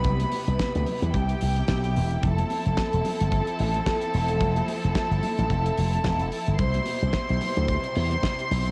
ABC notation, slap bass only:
X:1
M:4/4
L:1/16
Q:"Swing 16ths" 1/4=110
K:C
V:1 name="Slap bass" clef=bass
C,,2 z C,, z D,, z E,, C,,2 C,,2 B,,,2 E,,,2 | F,,,2 z F,,, z E,,, z G,,,2 z A,,,2 z2 E,,,2 | F,,,2 z F,,, z G,,, z A,,, F,,,2 F,,,2 E,,, F,,, z G,,, | C,,2 z C,, z B,,, z D,,2 z E,,2 z2 B,,,2 |]